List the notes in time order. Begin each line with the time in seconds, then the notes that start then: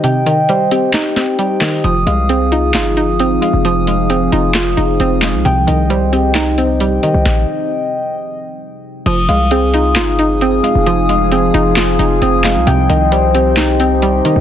Already playing: D#3 G3 C4 D#4 G4 D#5
0.04 C3 G5, closed hi-hat
0.26 D#3 D#5, closed hi-hat
0.49 G3 C5, closed hi-hat
0.71 C4 G4, closed hi-hat
0.94 D#4, snare, clap, closed hi-hat
1.16 C4, snare, closed hi-hat
1.39 G3 G5, closed hi-hat
1.61 D#3 D#5, snare, clap, open hi-hat
1.84 F1 F3 C4 D#4 G#4 D#6, closed hi-hat
2.07 C2 G#3 F5, closed hi-hat
2.29 C4 G#4, closed hi-hat
2.52 D#4 F4, closed hi-hat
2.74 G1 D#4 F4, snare, clap, closed hi-hat
2.97 D#4, closed hi-hat
3.20 C4 D#6, closed hi-hat
3.42 G#3 F5, closed hi-hat
3.53 F1
3.65 F3 D#6, closed hi-hat
3.87 G#3 F5, closed hi-hat
4.10 C4 G#4, closed hi-hat
4.32 F1 D#4 F4, closed hi-hat
4.55 D#4 F4, snare, clap, closed hi-hat
4.77 F1 D#4, closed hi-hat
5.00 F1 C4 D#6, closed hi-hat
5.22 G#3 F5, snare, clap, closed hi-hat
5.34 C2
5.45 C2 C3 C4 G4 G5, closed hi-hat
5.67 C2 D#3 D#5, closed hi-hat
5.90 G3 C5, closed hi-hat
6.13 C4 G4, closed hi-hat
6.35 D#4, snare, clap, closed hi-hat
6.58 C4, closed hi-hat
6.80 G3 G5, closed hi-hat
7.03 D#3 D#5, closed hi-hat
7.14 C2
7.25 kick, snare
9.06 F1 F3 C4 D#4 G#4 D#6, closed hi-hat, crash
9.29 C2 G#3 F5, closed hi-hat
9.51 C4 G#4, closed hi-hat
9.74 D#4 F4, closed hi-hat
9.96 G1 D#4 F4, snare, clap, closed hi-hat
10.19 D#4, closed hi-hat
10.41 C4 D#6, closed hi-hat
10.63 G#3 F5, closed hi-hat
10.75 F1
10.86 F3 D#6, closed hi-hat
11.09 G#3 F5, closed hi-hat
11.32 C4 G#4, closed hi-hat
11.54 F1 D#4 F4, closed hi-hat
11.76 D#4 F4, snare, clap, closed hi-hat
11.99 F1 D#4, closed hi-hat
12.22 F1 C4 D#6, closed hi-hat
12.44 G#3 F5, snare, clap, closed hi-hat
12.56 C2
12.67 C2 C3 G4 G5, closed hi-hat
12.89 C2 D#3 D#5, closed hi-hat
13.12 G3 C5, closed hi-hat
13.35 C4 G4, closed hi-hat
13.57 D#4, snare, clap, closed hi-hat
13.80 C4, closed hi-hat
14.02 G3 G5, closed hi-hat
14.25 D#3 D#5, closed hi-hat
14.36 C2